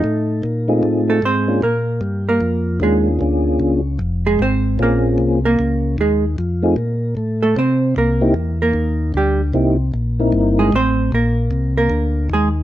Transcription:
X:1
M:4/4
L:1/8
Q:"Swing" 1/4=152
K:Bb
V:1 name="Hollow-body jazz guitar"
E4 z [A,A] [Cc]2 | [B,B]3 [B,B]3 [_A,_A] z | z4 z [_A,_A] [Cc]2 | [B,B]3 [B,B]3 [_A,_A] z |
z4 z [A,A] [Cc]2 | [B,B]3 [B,B]3 [G,G] z | z4 z [_A,_A] [Cc]2 | [B,B]3 [B,B]3 [_A,_A] z |]
V:2 name="Tonewheel organ"
z3 [A,CEF^G]3 z [B,_D=DFG] | z6 [B,^CDF_A]2 | [B,^CDF_A]3 z4 z | [B,C_DF_A]3 z4 z |
z [A,CEF^G] z6 | z [B,C^D=EG] z6 | [B,C^D=EG] z2 [B,CDEB]3 z2 | z8 |]
V:3 name="Tonewheel organ" clef=bass
A,,2 B,,2 A,,2 ^G,,2 | B,,2 G,,2 F,,2 E,,2 | D,,2 ^C,,2 F,,,2 _A,,,2 | B,,,2 C,,2 _D,,2 E,,2 |
F,,2 B,,2 A,,2 C,2 | C,,2 =E,,2 ^D,,2 =D,,2 | C,,2 B,,,2 G,,,2 A,,,2 | B,,,2 C,,2 D,,2 E,,2 |]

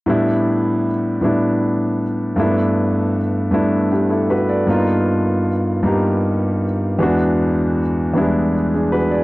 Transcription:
X:1
M:6/8
L:1/16
Q:3/8=52
K:G
V:1 name="Grand piano"
z12 | z8 [DG] [EA] [FB] [Ad]- | [Ad] z8 z3 | z8 z [D^G] [FB] [Gd] |]
V:2 name="Grand piano"
[A,,G,B,DE]4 z2 [A,,G,B,DE]4 z2 | [G,,A,_B,=B,DE]4 z2 [G,,A,B,DE]4 z2 | [G,,^A,B,^D=F]4 z2 [G,,A,B,DG]4 z2 | [E,,^G,B,DF]4 z2 [E,,=G,^G,B,DE]4 z2 |]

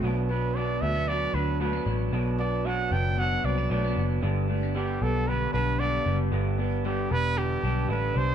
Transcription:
X:1
M:4/4
L:1/16
Q:1/4=114
K:G
V:1 name="Trumpet"
z2 B2 d2 e2 d2 B2 B3 z | z2 d2 f2 g2 f2 d2 d3 z | z4 G2 A2 B2 B2 d3 z | z4 G2 B2 G4 B2 c2 |]
V:2 name="Clean electric guitar"
[B,,F,B,D]2 [F,B,D]2 [B,,F,B,D]2 [F,B,D]2 [B,,F,B,D]2 [F,B,D]2 [B,,F,B,D]2 [F,B,D]2 | [B,,F,B,D]2 [F,B,D]2 [B,,F,B,D]2 [F,B,D]2 [B,,F,B,D]2 [F,B,D]2 [B,,F,B,D]2 [F,B,D]2 | [G,,D,G,B,D]2 [G,B,D]2 [G,,D,G,B,D]2 [G,B,D]2 [D,G,B,D]2 [G,B,D]2 [G,,D,G,B,D]2 [G,B,D]2 | [G,,D,G,B,D]2 [G,B,D]2 [G,,D,G,B,D]2 [G,B,D]2 [D,G,B,D]2 [G,B,D]2 [G,,D,G,B,D]2 [G,B,D]2 |]
V:3 name="Clean electric guitar"
B,,2 B,2 F,2 A, B, F,2 D2 A, B, F,2 | B,,2 B,2 F,2 B,2 F,2 C D A, B, F,2 | G,,2 A, B, G,2 B,2 D,2 D2 B,2 G,2 | G,,2 B,2 G,2 B,2 D,2 D4 G,2 |]
V:4 name="Picked electric bass" clef=bass
B,,,6 D,,4 D,,4 A,,,2 | B,,,6 F,,,4 C,,2 B,,,2 F,,,2 | G,,,6 B,,,4 B,,,4 F,,,2 | G,,,6 E,,,4 B,,,2 A,,,2 C,,2 |]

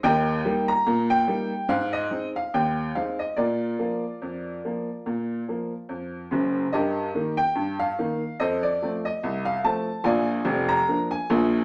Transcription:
X:1
M:2/4
L:1/16
Q:"Swing 16ths" 1/4=72
K:Eb
V:1 name="Upright piano"
[Beg]3 b2 g3 | f e2 f g2 f e | [FBd]8- | [FBd]6 z2 |
[GBe]3 g2 f3 | [=Ace] d2 e2 f =a2 | [dfa]3 b2 a3 |]
V:2 name="Upright piano" clef=bass
E,,2 [G,B,E]2 B,,2 [G,B,E]2 | A,,2 [A,CE]2 E,,2 [A,CE]2 | B,,2 [F,B,]2 F,,2 [F,B,]2 | B,,2 [F,B,]2 F,,2 [_G,,,_G,,]2 |
G,,2 [E,B,E]2 G,,2 [E,B,E]2 | F,,2 [F,=A,C]2 C,,2 [F,A,C]2 | [B,,,B,,]2 [F,,,F,,]2 [F,B,D]2 [B,,,B,,]2 |]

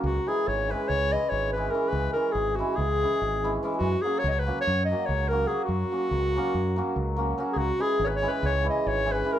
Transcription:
X:1
M:9/8
L:1/16
Q:3/8=96
K:C#dor
V:1 name="Clarinet"
F2 G2 c2 B2 c2 d2 c2 B2 A2 | B2 A2 G2 F2 G8 z2 | F2 G2 c/2 d/2 c B2 c2 d2 c2 A2 G2 | F12- F2 z3 z/2 G/2 |
F2 G2 c/2 B/2 c B2 c2 d2 c2 B2 A2 |]
V:2 name="Hammered dulcimer"
z2 [E,G,CE]2 z2 [E,G,CE]2 z2 [E,G,CE]2 z2 [E,G,CE]2 [E,G,CE]2 | z2 [E,G,CE]2 z2 [E,G,CE]2 z2 [E,G,CE]2 z2 [E,G,CE]2 [E,G,CE]2 | z2 [F,A,CF]2 z2 [F,A,CF]2 z2 [F,A,CF]2 z2 [F,A,CF]2 [F,A,CF]2 | z2 [F,A,CF]2 z2 [F,A,CF]2 z2 [F,A,CF]2 z2 [F,A,CF]2 [F,A,CF]2 |
z2 [E,G,CE]2 z2 [E,G,CE]2 z2 [E,G,CE]2 z2 [E,G,CE]2 [E,G,CE]2 |]
V:3 name="Fingered electric bass" clef=bass
C,,2 z2 G,,,4 C,,4 G,,,6 | C,,2 z2 G,,,4 C,,4 G,,,6 | F,,2 z2 C,,4 F,,4 C,,6 | F,,2 z2 C,,4 F,,4 C,,6 |
C,,2 z2 G,,,4 C,,4 G,,,6 |]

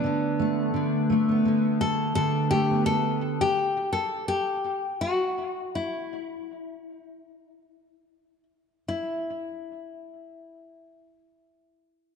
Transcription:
X:1
M:4/4
L:1/16
Q:"Swing 16ths" 1/4=81
K:G
V:1 name="Nylon-string guitar"
D4 z6 A2 A2 G2 | A3 G3 A2 G4 F4 | E12- E2 z2 | E16 |]
V:2 name="Steel-string acoustic guitar"
[D,B,]2 A,2 D,2 A, B, D,2 A,2 D,2 A, B, | z16 | z16 | z16 |]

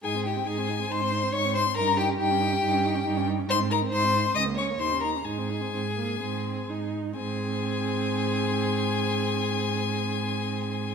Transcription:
X:1
M:4/4
L:1/16
Q:1/4=128
K:Ab
V:1 name="Violin"
a2 g2 a4 c'4 d'2 c'2 | b2 g2 g8- g2 z2 | c'2 b2 c'4 e'2 d'2 c'2 b2 | a12- a2 z2 |
a16- | a16 |]
V:2 name="Violin"
A2 G2 A4 c4 d2 c2 | B2 G2 G8- G2 z2 | c2 B2 c4 e2 d2 c2 B2 | A12- A2 z2 |
A16- | A16 |]
V:3 name="Viola"
E C E C E C E C E C E C E C E C | E D E D E D E D E D E D E D E D | E C E C E C E C D B, D B, E D E D | E C E C C2 B,2 C4 E4 |
C16- | C16 |]
V:4 name="Cello" clef=bass
A,,4 A,,4 A,,4 A,,4 | G,,4 G,,4 G,,4 G,,4 | A,,4 A,,4 D,,4 E,,4 | A,,4 A,,4 A,,4 A,,4 |
A,,16- | A,,16 |]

